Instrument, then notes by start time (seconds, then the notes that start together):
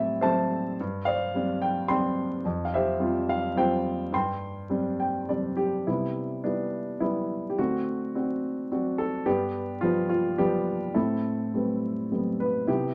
grand piano
Already playing: A2 G3 A3 C4 G4 D5 E5
0.21 G3 A3 C4 C5 E5 A5
0.80 G2
1.05 C5 D5 F5
1.34 G3 C4 D4
1.62 G5
1.88 G3 C4 D4 G5 C6
2.45 F2
2.65 F5
2.74 G4 C5 E5
2.99 G3 C4 F4
3.29 F5
3.56 G3 C4 F4 C5 G5
4.12 G2 G5 C6
4.70 G3 C4 D4
5.00 G5
5.29 G3 C4 D4 D5
5.57 G4
5.87 C3 G3 B3 E4
6.44 G3 B3 D4 E4
7.00 G3 B3 D4 E4
7.50 G4
7.58 D3 A3 C4 F#4
8.15 C4 D4 F#4
8.71 C4 D4 F#4
8.98 A4
9.25 G2 B3 D4 G4
9.81 F3 G3 B3 F4
10.09 F4
10.38 F3 G3 B3 D4 G4
10.94 A2 C4 E4 A4
11.54 G3 A3 C4 B4
12.12 G3 A3 B3 C4
12.40 B4
12.67 C3 B3 E4 G4